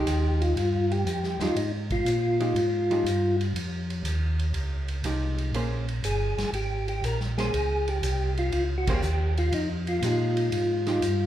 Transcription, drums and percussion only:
0.07 hi-hat pedal soft
0.07 ride medium
0.42 ride soft
0.57 ride medium
0.92 ride soft
1.07 hi-hat pedal soft
1.07 ride medium
1.23 snare soft
1.40 snare soft
1.40 ride soft
1.56 ride medium
1.90 kick soft
1.90 ride soft
2.06 hi-hat pedal medium
2.06 ride medium
2.40 ride soft
2.56 ride medium
2.91 ride soft
3.06 hi-hat pedal medium
3.06 ride medium
3.41 ride soft
3.56 ride medium
3.90 ride soft
4.05 hi-hat pedal medium
4.05 ride medium
4.39 ride soft
4.54 ride medium
4.88 ride soft
5.04 hi-hat pedal soft
5.04 ride medium
5.38 ride soft
5.54 ride medium
5.88 ride soft
6.04 hi-hat pedal medium
6.04 ride medium
6.38 snare soft
6.38 ride soft
6.54 ride medium
6.88 ride soft
7.04 hi-hat pedal soft
7.04 ride medium
7.20 snare soft
7.38 snare soft
7.38 ride soft
7.54 ride medium
7.88 ride soft
8.03 hi-hat pedal medium
8.03 ride medium
8.37 ride soft
8.52 ride medium
8.87 kick medium
8.87 ride medium
9.02 hi-hat pedal medium
9.37 ride soft
9.52 ride medium
9.87 ride soft
10.02 hi-hat pedal medium
10.02 ride medium
10.37 ride soft
10.52 ride medium
10.87 snare soft
10.87 ride soft
11.02 hi-hat pedal medium
11.02 ride medium

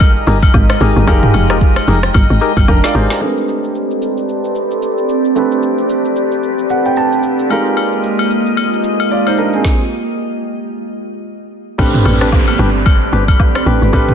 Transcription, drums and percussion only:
0.00 kick loud
0.00 high agogo medium
0.00 shaker medium
0.16 shaker medium
0.27 open hi-hat medium
0.27 shaker loud
0.43 kick loud
0.43 high agogo medium
0.43 shaker medium
0.54 kick loud
0.54 low woodblock medium
0.54 shaker medium
0.69 cross-stick medium
0.69 high agogo medium
0.69 shaker medium
0.81 open hi-hat medium
0.81 shaker loud
0.96 shaker medium
1.07 kick loud
1.07 high agogo medium
1.07 shaker medium
1.23 mid tom loud
1.23 shaker medium
1.34 open hi-hat medium
1.34 high agogo medium
1.34 shaker medium
1.50 cross-stick medium
1.50 shaker soft
1.61 kick loud
1.61 shaker medium
1.76 cross-stick medium
1.76 high agogo medium
1.76 shaker medium
1.88 open hi-hat medium
1.88 shaker medium
2.03 cross-stick medium
2.03 shaker medium
2.14 kick loud
2.14 high agogo medium
2.14 shaker medium
2.30 shaker medium
2.41 open hi-hat medium
2.41 shaker loud
2.57 kick loud
2.57 high agogo medium
2.57 shaker medium
2.68 kick loud
2.68 low woodblock medium
2.68 shaker medium
2.84 snare medium
2.84 high agogo medium
2.84 shaker soft
2.95 open hi-hat medium
2.95 shaker loud
3.10 snare medium
3.10 shaker soft
3.22 shaker medium
3.37 shaker medium
3.49 shaker medium
3.64 shaker soft
3.75 shaker medium
3.91 shaker medium
4.02 shaker medium
4.18 shaker soft
4.29 shaker soft
4.44 shaker soft
4.55 shaker medium
4.71 shaker medium
4.82 shaker medium
4.98 shaker soft
5.09 shaker loud
5.25 shaker soft
5.36 shaker medium
5.51 shaker soft
5.63 shaker medium
5.78 shaker soft
5.89 shaker medium
6.05 shaker medium
6.16 shaker medium
6.32 shaker medium
6.43 shaker soft
6.59 shaker soft
6.70 shaker medium
6.85 shaker medium
6.97 shaker medium
7.12 shaker soft
7.23 shaker loud
7.39 shaker soft
7.50 high agogo medium
7.50 shaker medium
7.66 shaker medium
7.77 high agogo medium
7.77 shaker medium
7.93 shaker soft
8.04 shaker medium
8.19 high agogo medium
8.19 shaker medium
8.30 shaker medium
8.46 shaker soft
8.57 high agogo medium
8.57 shaker medium
8.73 shaker soft
8.84 shaker medium
9.00 high agogo medium
9.00 shaker medium
9.11 shaker medium
9.27 high agogo medium
9.27 shaker soft
9.38 shaker loud
9.53 shaker soft
9.65 kick loud
9.65 snare medium
11.79 kick loud
11.79 high agogo medium
11.79 shaker medium
11.94 mid tom loud
11.94 shaker medium
12.05 high agogo medium
12.05 shaker medium
12.21 cross-stick medium
12.21 shaker soft
12.32 kick medium
12.32 low woodblock medium
12.32 shaker medium
12.48 high agogo medium
12.48 shaker medium
12.59 shaker medium
12.75 shaker soft
12.86 kick loud
12.86 high agogo medium
12.86 shaker medium
13.02 shaker medium
13.13 shaker loud
13.28 kick loud
13.28 high agogo medium
13.28 shaker medium
13.40 kick loud
13.40 low woodblock medium
13.40 shaker medium
13.55 cross-stick medium
13.55 high agogo medium
13.55 shaker soft
13.66 shaker loud
13.82 shaker soft
13.93 kick loud
13.93 high agogo medium
13.93 shaker medium
14.09 mid tom medium
14.09 shaker medium

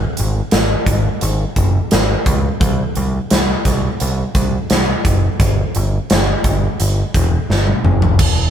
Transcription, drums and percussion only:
0.17 closed hi-hat medium
0.51 snare loud
0.51 closed hi-hat medium
0.86 kick medium
0.86 closed hi-hat medium
1.21 closed hi-hat medium
1.56 kick medium
1.56 closed hi-hat medium
1.91 snare medium
1.91 closed hi-hat medium
2.26 kick medium
2.26 closed hi-hat medium
2.61 kick loud
2.61 closed hi-hat medium
2.95 closed hi-hat medium
3.30 snare medium
3.30 closed hi-hat medium
3.65 kick medium
3.65 snare soft
3.65 closed hi-hat medium
4.00 closed hi-hat medium
4.35 kick medium
4.35 closed hi-hat medium
4.70 snare loud
4.70 closed hi-hat medium
5.05 kick medium
5.05 closed hi-hat medium
5.40 kick loud
5.40 closed hi-hat medium
5.75 closed hi-hat medium
6.10 snare loud
6.10 closed hi-hat medium
6.44 kick medium
6.44 closed hi-hat medium
6.80 closed hi-hat medium
7.14 kick medium
7.14 closed hi-hat medium
7.50 snare medium
7.67 high tom medium
7.85 mid tom medium
8.02 floor tom medium
8.19 kick medium
8.19 crash medium

